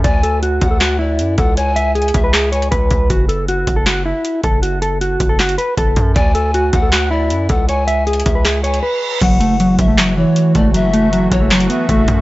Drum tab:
CC |------------------------------------------------|------------------------------------------------|------------------------------------------------|------------------------------------------------|
HH |x-----x-----x-----x-----x-----------x-----x-----|x-----x-----x-x-x-x-----x-----x--x--x-----x-----|x-----x-----x-----x-----x-----------x-----x-----|x-----x-----x-----x-----x--x--x-----x-----x-----|
CP |------------------------x-----------------------|------------------------x-----------------------|------------------------x-----------------------|------------------------x-----------------------|
SD |------------------------o-----------------------|------------------------o-----------------------|------------------------o-----------------------|------------------------o-----------------------|
BD |o-----------------o-----------------------o-----|------------------o-----------------o-----o-----|o-----------------o-----------------------o-----|------------------o-----------------o-----o-----|

CC |------------------------------------------------|------------------------------------------------|x-----------------------------------------------|------------------------------------------------|
HH |x-----x-----x-----x-----x-----------x-----x-----|x-----x-----x-x-x-x-----x-----x--x--------------|x-----x-----x-----x-----x-----------x-----x-----|x-----x-----x-----x-----x--x--x-----x-----x-----|
CP |------------------------x-----------------------|------------------------x-----------------------|------------------------x-----------------------|------------------------x-----------------------|
SD |------------------------o-----------------------|------------------------o-----------------------|------------------------o-----------------------|------------------------o-----------------------|
BD |o-----------------o-----------------------o-----|------------------o-----------------------------|o-----------------o-----------------------o-----|------------------o-----------------o-----o-----|